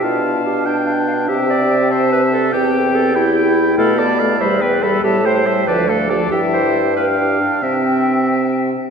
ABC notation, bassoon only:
X:1
M:6/8
L:1/8
Q:3/8=95
K:C
V:1 name="Bassoon" clef=bass
B,,6 | C,6 | E,,6 | B,,3 E,,3 |
A,,3 D,,3 | G,,6 | C,4- C, z |]